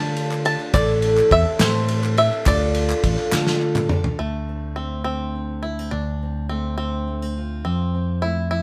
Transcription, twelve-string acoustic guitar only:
0, 0, Header, 1, 2, 480
1, 0, Start_track
1, 0, Key_signature, -1, "minor"
1, 0, Tempo, 576369
1, 615, Time_signature, 6, 3, 24, 8
1, 7182, End_track
2, 0, Start_track
2, 0, Title_t, "Twelve-string acoustic guitar"
2, 0, Program_c, 0, 25
2, 0, Note_on_c, 0, 50, 57
2, 0, Note_on_c, 0, 57, 64
2, 0, Note_on_c, 0, 62, 69
2, 0, Note_on_c, 0, 65, 73
2, 0, Note_on_c, 0, 69, 81
2, 371, Note_off_c, 0, 69, 0
2, 374, Note_on_c, 0, 69, 60
2, 377, Note_off_c, 0, 65, 0
2, 378, Note_off_c, 0, 62, 0
2, 382, Note_off_c, 0, 50, 0
2, 389, Note_on_c, 0, 65, 51
2, 394, Note_on_c, 0, 62, 49
2, 614, Note_off_c, 0, 69, 0
2, 615, Note_on_c, 0, 45, 77
2, 616, Note_off_c, 0, 57, 0
2, 616, Note_on_c, 0, 52, 91
2, 619, Note_off_c, 0, 62, 0
2, 619, Note_on_c, 0, 57, 81
2, 621, Note_off_c, 0, 65, 0
2, 623, Note_on_c, 0, 60, 93
2, 626, Note_on_c, 0, 64, 83
2, 627, Note_on_c, 0, 69, 102
2, 1091, Note_off_c, 0, 57, 0
2, 1093, Note_off_c, 0, 45, 0
2, 1093, Note_off_c, 0, 52, 0
2, 1093, Note_off_c, 0, 60, 0
2, 1094, Note_on_c, 0, 57, 60
2, 1098, Note_off_c, 0, 64, 0
2, 1103, Note_on_c, 0, 60, 73
2, 1111, Note_on_c, 0, 64, 75
2, 1114, Note_off_c, 0, 69, 0
2, 1117, Note_on_c, 0, 69, 75
2, 1322, Note_off_c, 0, 69, 0
2, 1326, Note_off_c, 0, 60, 0
2, 1326, Note_off_c, 0, 64, 0
2, 1330, Note_off_c, 0, 57, 0
2, 1332, Note_on_c, 0, 69, 75
2, 1336, Note_on_c, 0, 60, 64
2, 1336, Note_on_c, 0, 64, 67
2, 1340, Note_on_c, 0, 57, 65
2, 1344, Note_on_c, 0, 52, 64
2, 1347, Note_on_c, 0, 45, 61
2, 1806, Note_off_c, 0, 69, 0
2, 1808, Note_off_c, 0, 64, 0
2, 1809, Note_on_c, 0, 69, 65
2, 1812, Note_off_c, 0, 60, 0
2, 1816, Note_off_c, 0, 52, 0
2, 1818, Note_off_c, 0, 45, 0
2, 1818, Note_on_c, 0, 64, 56
2, 1823, Note_on_c, 0, 60, 51
2, 1826, Note_off_c, 0, 57, 0
2, 1829, Note_on_c, 0, 57, 45
2, 2049, Note_off_c, 0, 57, 0
2, 2049, Note_off_c, 0, 69, 0
2, 2050, Note_on_c, 0, 50, 79
2, 2053, Note_off_c, 0, 64, 0
2, 2056, Note_off_c, 0, 60, 0
2, 2059, Note_on_c, 0, 57, 81
2, 2061, Note_on_c, 0, 62, 78
2, 2064, Note_on_c, 0, 65, 83
2, 2067, Note_on_c, 0, 69, 85
2, 2526, Note_off_c, 0, 57, 0
2, 2528, Note_off_c, 0, 50, 0
2, 2534, Note_off_c, 0, 62, 0
2, 2536, Note_off_c, 0, 65, 0
2, 2536, Note_on_c, 0, 57, 60
2, 2537, Note_off_c, 0, 69, 0
2, 2545, Note_on_c, 0, 62, 58
2, 2550, Note_on_c, 0, 65, 69
2, 2558, Note_on_c, 0, 69, 65
2, 2765, Note_off_c, 0, 69, 0
2, 2769, Note_off_c, 0, 65, 0
2, 2772, Note_off_c, 0, 57, 0
2, 2772, Note_off_c, 0, 62, 0
2, 2775, Note_on_c, 0, 69, 82
2, 2779, Note_on_c, 0, 65, 79
2, 2782, Note_on_c, 0, 62, 74
2, 2786, Note_on_c, 0, 57, 74
2, 2792, Note_on_c, 0, 50, 59
2, 3237, Note_off_c, 0, 69, 0
2, 3247, Note_on_c, 0, 69, 69
2, 3249, Note_off_c, 0, 65, 0
2, 3255, Note_off_c, 0, 62, 0
2, 3256, Note_off_c, 0, 57, 0
2, 3259, Note_off_c, 0, 50, 0
2, 3259, Note_on_c, 0, 65, 65
2, 3270, Note_on_c, 0, 62, 55
2, 3487, Note_off_c, 0, 69, 0
2, 3493, Note_off_c, 0, 65, 0
2, 3498, Note_off_c, 0, 62, 0
2, 7182, End_track
0, 0, End_of_file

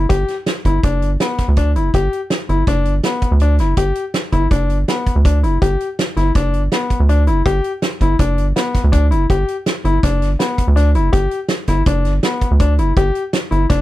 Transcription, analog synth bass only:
0, 0, Header, 1, 2, 480
1, 0, Start_track
1, 0, Key_signature, 1, "major"
1, 0, Tempo, 367647
1, 127, Time_signature, 5, 2, 24, 8
1, 18036, End_track
2, 0, Start_track
2, 0, Title_t, "Analog synth bass"
2, 0, Program_c, 0, 38
2, 129, Note_on_c, 0, 31, 88
2, 322, Note_off_c, 0, 31, 0
2, 848, Note_on_c, 0, 31, 92
2, 1042, Note_off_c, 0, 31, 0
2, 1087, Note_on_c, 0, 30, 88
2, 1337, Note_on_c, 0, 31, 92
2, 1356, Note_off_c, 0, 30, 0
2, 1527, Note_off_c, 0, 31, 0
2, 1936, Note_on_c, 0, 38, 80
2, 2293, Note_on_c, 0, 30, 80
2, 2312, Note_off_c, 0, 38, 0
2, 2485, Note_off_c, 0, 30, 0
2, 2533, Note_on_c, 0, 31, 86
2, 2725, Note_off_c, 0, 31, 0
2, 3252, Note_on_c, 0, 31, 86
2, 3446, Note_off_c, 0, 31, 0
2, 3492, Note_on_c, 0, 30, 92
2, 3729, Note_on_c, 0, 31, 92
2, 3749, Note_off_c, 0, 30, 0
2, 3924, Note_off_c, 0, 31, 0
2, 4327, Note_on_c, 0, 38, 90
2, 4688, Note_on_c, 0, 30, 90
2, 4708, Note_off_c, 0, 38, 0
2, 4884, Note_off_c, 0, 30, 0
2, 4925, Note_on_c, 0, 31, 88
2, 5123, Note_off_c, 0, 31, 0
2, 5649, Note_on_c, 0, 31, 91
2, 5845, Note_off_c, 0, 31, 0
2, 5885, Note_on_c, 0, 30, 89
2, 6134, Note_on_c, 0, 31, 92
2, 6154, Note_off_c, 0, 30, 0
2, 6329, Note_off_c, 0, 31, 0
2, 6732, Note_on_c, 0, 38, 83
2, 7090, Note_on_c, 0, 30, 86
2, 7109, Note_off_c, 0, 38, 0
2, 7287, Note_off_c, 0, 30, 0
2, 7336, Note_on_c, 0, 31, 89
2, 7531, Note_off_c, 0, 31, 0
2, 8050, Note_on_c, 0, 31, 87
2, 8247, Note_off_c, 0, 31, 0
2, 8290, Note_on_c, 0, 30, 92
2, 8537, Note_on_c, 0, 31, 88
2, 8556, Note_off_c, 0, 30, 0
2, 8731, Note_off_c, 0, 31, 0
2, 9137, Note_on_c, 0, 38, 86
2, 9504, Note_on_c, 0, 30, 87
2, 9523, Note_off_c, 0, 38, 0
2, 9696, Note_off_c, 0, 30, 0
2, 9739, Note_on_c, 0, 31, 92
2, 9933, Note_off_c, 0, 31, 0
2, 10454, Note_on_c, 0, 31, 91
2, 10650, Note_off_c, 0, 31, 0
2, 10697, Note_on_c, 0, 30, 91
2, 10942, Note_on_c, 0, 31, 97
2, 10962, Note_off_c, 0, 30, 0
2, 11135, Note_off_c, 0, 31, 0
2, 11540, Note_on_c, 0, 38, 87
2, 11900, Note_on_c, 0, 30, 85
2, 11919, Note_off_c, 0, 38, 0
2, 12093, Note_off_c, 0, 30, 0
2, 12140, Note_on_c, 0, 31, 90
2, 12333, Note_off_c, 0, 31, 0
2, 12854, Note_on_c, 0, 31, 86
2, 13049, Note_off_c, 0, 31, 0
2, 13100, Note_on_c, 0, 30, 89
2, 13330, Note_on_c, 0, 31, 94
2, 13350, Note_off_c, 0, 30, 0
2, 13526, Note_off_c, 0, 31, 0
2, 13938, Note_on_c, 0, 38, 89
2, 14300, Note_on_c, 0, 30, 89
2, 14320, Note_off_c, 0, 38, 0
2, 14491, Note_off_c, 0, 30, 0
2, 14530, Note_on_c, 0, 31, 93
2, 14725, Note_off_c, 0, 31, 0
2, 15251, Note_on_c, 0, 31, 97
2, 15445, Note_off_c, 0, 31, 0
2, 15490, Note_on_c, 0, 30, 89
2, 15732, Note_on_c, 0, 31, 100
2, 15752, Note_off_c, 0, 30, 0
2, 15925, Note_off_c, 0, 31, 0
2, 16335, Note_on_c, 0, 38, 78
2, 16687, Note_on_c, 0, 30, 91
2, 16706, Note_off_c, 0, 38, 0
2, 16880, Note_off_c, 0, 30, 0
2, 16929, Note_on_c, 0, 31, 98
2, 17121, Note_off_c, 0, 31, 0
2, 17645, Note_on_c, 0, 31, 86
2, 17838, Note_off_c, 0, 31, 0
2, 17888, Note_on_c, 0, 30, 91
2, 18036, Note_off_c, 0, 30, 0
2, 18036, End_track
0, 0, End_of_file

